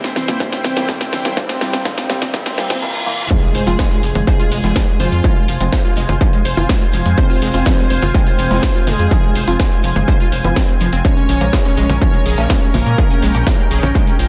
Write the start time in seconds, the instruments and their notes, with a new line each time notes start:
Already playing: analog synth lead C4, analog synth pad E4 C5 G5, riser
0.04 synth pluck C4, snare, closed hi-hat
0.16 analog synth bass C2, synth pluck E3, snare, open hi-hat, tambourine
0.28 analog synth bass C2, synth stab A#2 E3 A#3, synth pluck G3, snare, closed hi-hat, low conga
0.40 synth pluck G3, analog synth lead C4, kick, snare, closed hi-hat, tambourine
0.52 synth pluck C4, snare, closed hi-hat
0.64 analog synth bass C2, synth pluck E3, snare, open hi-hat, tambourine
0.77 analog synth bass C2, synth stab A#2 E3 A#3, synth pluck G3, snare, closed hi-hat
0.89 synth pluck G3, analog synth lead C4, kick, snare, closed hi-hat, tambourine
1.01 synth pluck C4, snare, closed hi-hat
1.13 analog synth bass C2, synth pluck E3, snare, open hi-hat, tambourine, low conga
1.25 analog synth bass C2, synth stab A#2 E3 A#3, synth pluck G3, snare, closed hi-hat
1.37 synth stab A#2 E3 A#3, synth pluck G3, analog synth lead C4, kick, snare, closed hi-hat, tambourine
1.49 synth pluck C4, snare, closed hi-hat
1.61 analog synth bass C2, synth stab A#2 E3 A#3, synth pluck G3, analog synth lead C4, snare, open hi-hat, tambourine
1.73 analog synth bass C2, synth pluck C4, snare, closed hi-hat
1.85 synth stab A#2 E3 A#3, synth pluck G3, analog synth lead C4, kick, snare, closed hi-hat, tambourine
1.98 synth pluck C4, snare, closed hi-hat
2.10 analog synth bass C2, synth stab A#2 E3 A#3, synth pluck G3, analog synth lead C4, snare, open hi-hat, tambourine
2.22 analog synth bass C2, synth pluck C4, snare, closed hi-hat, low conga
2.34 synth stab A#2 E3 A#3, synth pluck G3, analog synth lead C4, kick, snare, closed hi-hat, tambourine, reverse cymbal
2.46 synth pluck C4, snare, closed hi-hat
2.58 analog synth bass G1, synth stab A#2 E3 A#3, synth pluck G3, analog synth lead C4, snare, open hi-hat, tambourine, low conga
2.70 analog synth bass C2, synth pluck C4, snare, closed hi-hat, low conga
2.82 synth stab A#2 E3 A#3
3.06 synth stab A#2 E3 A#3
3.30 synth pluck F3, analog synth lead G#3, analog synth pad F4 C5 G#5, supersaw synth G#4, kick, closed hi-hat, tambourine, impact, shaker
3.43 synth pluck G#3, shaker
3.55 analog synth bass F1, synth pluck C5, open hi-hat, tambourine, shaker
3.67 analog synth bass F1, synth stab F3 C4 F4, synth pluck F4, closed hi-hat, shaker
3.79 synth pluck G#3, kick, snare, closed hi-hat, tambourine, shaker
3.91 synth pluck F4, snare, shaker
4.03 analog synth bass F1, synth pluck F3, open hi-hat, tambourine, shaker
4.15 analog synth bass F1, synth pluck G#3, closed hi-hat, low conga, shaker
4.27 analog synth lead G#3, supersaw synth G#4, synth pluck C5, kick, closed hi-hat, tambourine, shaker
4.40 synth pluck F4, closed hi-hat, shaker
4.51 analog synth bass F1, synth pluck G#3, open hi-hat, tambourine, shaker
4.64 analog synth bass F1, synth stab F3 C4 F4, synth pluck F4, snare, closed hi-hat, shaker
4.75 synth pluck F3, kick, snare, closed hi-hat, tambourine, shaker
4.88 synth pluck G#3, shaker
5.00 analog synth bass F1, analog synth lead F3, supersaw synth F4, synth pluck C5, snare, open hi-hat, tambourine, low conga, shaker
5.12 analog synth bass F2, synth pluck F4, closed hi-hat, shaker
5.24 synth pluck G#3, kick, closed hi-hat, tambourine, shaker
5.36 synth pluck F4, shaker
5.48 analog synth bass F1, synth pluck F3, open hi-hat, tambourine, shaker
5.61 analog synth bass F1, synth stab F3 C4 F4, synth pluck G#3, closed hi-hat, shaker
5.73 synth pluck C5, kick, snare, closed hi-hat, tambourine, shaker
5.85 synth pluck F4, shaker
5.96 analog synth bass F1, synth pluck G#3, open hi-hat, tambourine, shaker
6.09 analog synth bass F1, synth pluck F4, closed hi-hat, low conga, shaker
6.21 synth pluck F3, kick, closed hi-hat, tambourine, shaker
6.33 synth pluck G#3, closed hi-hat, shaker
6.45 analog synth bass F1, synth pluck C5, open hi-hat, tambourine, shaker
6.57 analog synth bass F1, synth stab F3 C4 F4, synth pluck F4, closed hi-hat, low conga, shaker
6.69 synth pluck G#3, kick, snare, closed hi-hat, tambourine, shaker
6.81 synth pluck F4, shaker
6.93 analog synth bass F1, synth pluck F3, open hi-hat, tambourine, shaker
7.06 analog synth bass F2, synth pluck G#3, closed hi-hat, shaker
7.17 analog synth lead C4, supersaw synth C5, synth pluck C5, kick, closed hi-hat, tambourine, shaker
7.29 synth pluck F4, shaker
7.42 analog synth bass F1, synth pluck G#3, open hi-hat, tambourine, shaker
7.54 analog synth bass F1, synth stab F3 C4 F4, synth pluck F4, closed hi-hat, shaker
7.66 synth pluck F3, kick, snare, closed hi-hat, tambourine, shaker
7.78 synth pluck G#3, snare, shaker
7.90 analog synth bass F1, synth pluck C5, open hi-hat, tambourine, shaker
8.02 analog synth bass F1, synth pluck F4, closed hi-hat, low conga, shaker
8.14 synth pluck G#3, analog synth lead C4, supersaw synth C5, kick, closed hi-hat, tambourine, shaker
8.26 synth pluck F4, closed hi-hat, shaker
8.39 analog synth bass F1, synth pluck F3, open hi-hat, tambourine, shaker
8.51 analog synth bass F1, synth stab F3 C4 F4, synth pluck G#3, snare, closed hi-hat, shaker
8.63 synth pluck C5, kick, snare, closed hi-hat, tambourine, shaker
8.75 synth pluck F4, shaker
8.87 analog synth bass F1, synth pluck G#3, analog synth lead G#3, supersaw synth G#4, snare, open hi-hat, tambourine, low conga, shaker
8.99 analog synth bass F2, synth pluck F4, closed hi-hat, shaker
9.11 synth pluck F3, kick, closed hi-hat, tambourine, shaker
9.23 synth pluck G#3, shaker
9.35 analog synth bass F1, synth pluck C5, open hi-hat, tambourine, shaker
9.48 analog synth bass F1, synth stab F3 C4 F4, synth pluck F4, closed hi-hat, shaker
9.59 synth pluck G#3, kick, snare, closed hi-hat, tambourine, shaker
9.71 synth pluck F4, closed hi-hat, shaker
9.83 analog synth bass F1, synth pluck F3, open hi-hat, tambourine, shaker
9.96 analog synth bass F1, synth pluck G#3, closed hi-hat, low conga, shaker
10.08 synth pluck C5, kick, closed hi-hat, tambourine, shaker
10.20 synth pluck F4, closed hi-hat, shaker
10.32 analog synth bass F1, synth pluck C5, open hi-hat, tambourine, shaker
10.44 analog synth bass F1, synth pluck F3, synth stab F3 C4 F4, closed hi-hat, low conga, shaker
10.56 synth pluck C4, kick, snare, closed hi-hat, tambourine, shaker
10.68 synth pluck C4, closed hi-hat, shaker
10.80 analog synth bass F1, synth pluck F3, open hi-hat, tambourine, shaker
10.93 analog synth bass F1, synth pluck C4, closed hi-hat, shaker
11.05 synth pluck G#3, analog synth lead C#4, analog synth pad C#4 A#4, supersaw synth C#5, kick, closed hi-hat, tambourine, shaker
11.17 synth pluck C#4, shaker
11.29 analog synth bass A#1, synth pluck F3, open hi-hat, tambourine, shaker
11.41 analog synth bass A#1, synth stab A#2 F3 A#3, synth pluck G#3, closed hi-hat, shaker
11.53 synth pluck G#4, kick, snare, closed hi-hat, tambourine, shaker
11.65 synth pluck C#4, snare, shaker
11.77 analog synth bass A#1, synth pluck G#3, open hi-hat, tambourine, shaker
11.89 analog synth bass A#1, synth pluck C#4, closed hi-hat, low conga, shaker
12.01 synth pluck F3, analog synth lead C#4, supersaw synth C#5, kick, closed hi-hat, tambourine, shaker
12.13 synth pluck G#3, closed hi-hat, shaker
12.26 analog synth bass A#1, synth pluck G#4, open hi-hat, tambourine, shaker
12.38 analog synth bass A#1, synth stab A#2 F3 A#3, synth pluck C#4, snare, closed hi-hat, shaker
12.49 synth pluck G#3, kick, snare, closed hi-hat, tambourine, shaker
12.62 synth pluck C#4, shaker
12.74 analog synth bass A#1, synth pluck F3, analog synth lead A#3, supersaw synth A#4, snare, open hi-hat, tambourine, low conga, shaker
12.86 analog synth bass A#2, synth pluck G#3, closed hi-hat, shaker
12.98 synth pluck G#4, analog synth pad G5, kick, closed hi-hat, tambourine, shaker
13.10 synth pluck C#4, shaker
13.22 analog synth bass A#1, synth pluck G#3, open hi-hat, tambourine, shaker
13.35 analog synth bass A#1, synth stab A#2 F3 A#3, synth pluck C#4, closed hi-hat, shaker
13.47 synth pluck F3, kick, snare, closed hi-hat, tambourine, shaker
13.59 synth pluck G#3, shaker
13.71 analog synth bass A#1, synth pluck G#4, open hi-hat, tambourine, shaker
13.83 analog synth bass A#1, synth pluck C#4, closed hi-hat, low conga, shaker
13.95 synth pluck G#3, kick, closed hi-hat, tambourine, shaker
14.06 synth pluck C#4, closed hi-hat, shaker
14.19 analog synth bass A#1, synth pluck F3, open hi-hat, tambourine, shaker